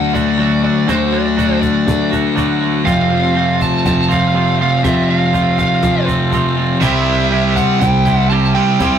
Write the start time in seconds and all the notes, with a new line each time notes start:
Already playing: D2 D3 F#3 A3 D4 F#4 F#5
0.14 A3 D4 F#4 D5, cajon bass
0.38 D3 F#3 A3 D4 F#4
0.63 A3 D4 F#4 D5
0.87 D2 D3 F#3 A3 D4 F#4 C5, cajon bass, cajon slap
1.12 A3 D4 F#4 D5
1.36 F#3 A3 D4 F#4, cajon bass
1.61 D5, cajon bass
1.87 D3 A3 D4, cajon bass, cajon slap
2.11 A3 D4 F#4, cajon bass
2.35 D3 F#3 A3 D4 F#4, cajon bass
2.61 A3 D4 F#4
2.84 F2 C3 F3 A3 C4 F4 F5, cajon bass
3.10 F3 A3 C4 F4
3.34 F3 A3 C4 F4
3.61 A5, cajon bass
3.84 F2 C3 F3 A5, cajon bass, cajon slap
4.09 F3 A3 C4 F4 F5, cajon bass
4.34 F2 C3 F3 A3 C4 F4
4.59 F3 A3 C4 F4 F5
4.83 F2 C3 F3 A3 C4 F4 E5, cajon bass, cajon slap
5.08 F3 A3 C4 F4 F5
5.33 F3 A3 C4 F4, cajon bass
5.58 F5, cajon bass
5.83 F2 C3 F3, cajon bass, cajon slap
6.06 F3 A3 C4 F4, cajon bass
6.32 F2 C3 F3 A3 C4 F4, cajon bass
6.57 F3 A3 C4 F4
6.81 C2 C3 G3 C4 E4 G4 E5, cajon bass
7.06 C4 E4 G4
7.31 G3 C4 E4 G4
7.56 F#5, cajon bass
7.80 C2 C3 G3 G5, cajon bass, cajon slap
7.85 C4
8.06 C4 E4 G4, cajon bass
8.14 F#5
8.30 C3 G3 C4 E4 G4 A5
8.54 G3 C4 E4 G4 G5
8.58 C3
8.79 C2 C3 G3 C4 E4 G4, cajon bass, cajon slap